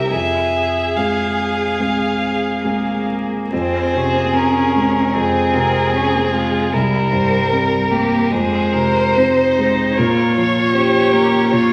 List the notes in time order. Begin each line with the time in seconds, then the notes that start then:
Already playing: C2 G3 C#4 G4 A#4
0.09 F2 G#4 E5
0.96 G#3 C4 G#4 F5
1.79 G#3 C4 G#4
2.63 G#3 A#3 C4 G#4
3.52 F2 C4 G#4 C5
3.95 C3 C#4
4.05 C4
4.14 A#3
4.24 C4
4.33 C4 C#4 A#4
4.76 G#3
5.13 F2 C4 G#4
5.54 C3 A#4
5.93 C4 C#4 G#4
6.06 C4
6.15 A#3
6.24 C4
6.33 G#3 F4
6.73 C2 G3 E4 A#4
7.12 G2 C5
7.51 C4 A#4
7.90 A#3 G4
8.31 F2 G#3 G#4 C5
8.73 C3 A#4
9.16 C4 D#4 C5
9.58 G#3
9.97 A#2 F4 A#4 C#5
10.35 F3 C#5
10.74 C#4 G4 C5
11.12 A#3 A#4
11.52 A#2 F4 C#5